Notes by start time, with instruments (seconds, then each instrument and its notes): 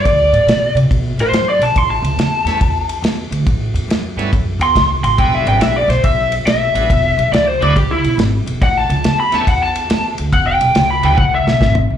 Already playing: lead electric guitar D5
0.05 upright bass D2, kick, ride
0.32 upright bass A2, ride
0.47 upright bass B2, snare, ride
0.75 upright bass C3, ride
0.91 upright bass B2, kick, ride
1.18 upright bass A2, ride
1.22 lead electric guitar C5
1.32 upright bass F#2, snare, ride
1.49 lead electric guitar D5
1.59 upright bass B1, lead electric guitar A5, ride
1.76 upright bass A1, lead electric guitar C6, kick, ride
1.91 lead electric guitar A5
2.02 upright bass C#2, ride
2.16 upright bass E2, snare, ride
2.45 upright bass E2, tonewheel organ G3 A3 B3 C#4 E4, snare, ride
2.61 upright bass E2, kick, ride
2.89 ride
3.02 upright bass E2, snare, ride
3.31 upright bass D2, ride
3.46 upright bass A1, kick, ride
3.74 upright bass E2, ride
3.88 upright bass F#2, snare, ride
4.16 upright bass G2, tonewheel organ G3 A3 B3 C#4 E4, ride
4.32 upright bass F#2, kick, ride
4.59 upright bass E2, lead electric guitar C6, ride
4.75 upright bass C#2, kick, snare, ride
5.03 upright bass A1, lead electric guitar C6, ride
5.18 upright bass E1, tonewheel organ F#3 G#3 B3 D4 E4, lead electric guitar G5, kick, ride
5.35 lead electric guitar E5
5.46 upright bass G#1, lead electric guitar G5, ride
5.60 upright bass B1, lead electric guitar E5, snare, ride
5.76 lead electric guitar D5
5.88 upright bass B1, lead electric guitar C5, snare, ride
6.03 upright bass B1, lead electric guitar E5, kick, ride
6.32 ride
6.46 upright bass B1, lead electric guitar E5, snare, ride
6.74 upright bass A1, tonewheel organ F#3 G#3 B3 D4 E4, ride
6.89 upright bass E1, kick, ride
7.17 upright bass B1, ride
7.32 upright bass C#2, lead electric guitar D5, snare, ride
7.47 lead electric guitar C5
7.60 upright bass D2, tonewheel organ F#3 G#3 B3 D4 E4, lead electric guitar D5, ride
7.76 upright bass C#2, lead electric guitar G4, kick, ride
7.91 lead electric guitar E4
8.04 upright bass B1, ride
8.18 upright bass G#1, snare, ride
8.46 upright bass E1, ride
8.61 upright bass A1, lead electric guitar F#5, kick, ride
8.77 lead electric guitar A5
8.89 upright bass C#2, ride
9.04 upright bass E2, snare, ride
9.20 lead electric guitar B5
9.32 upright bass E2, tonewheel organ G3 A3 B3 C#4 E4, lead electric guitar A5, snare, ride
9.47 upright bass E2, lead electric guitar F#5, kick, ride
9.63 lead electric guitar A5
9.75 ride
9.90 upright bass E2, snare, ride
10.18 upright bass D2, ride
10.32 upright bass E1, lead electric guitar F#5, kick, ride
10.47 lead electric guitar G5
10.61 upright bass B1, ride
10.75 upright bass C#2, snare, ride
10.91 lead electric guitar B5
11.03 upright bass D2, tonewheel organ F#3 G#3 B3 D4 E4, lead electric guitar G5, ride
11.18 upright bass C#2, lead electric guitar F#5, kick, high tom
11.35 lead electric guitar E5
11.47 upright bass B1, snare
11.61 upright bass G#1, kick, snare
11.75 floor tom
11.90 upright bass B1